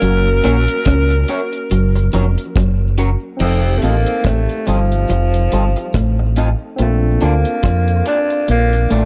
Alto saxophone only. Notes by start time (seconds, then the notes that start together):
Already playing: A#4
3.41 C4
3.78 A3
3.84 A#3
4.25 A3
4.67 F3
6.81 A3
7.23 A#3
8.08 D4
8.51 A#3
8.93 A3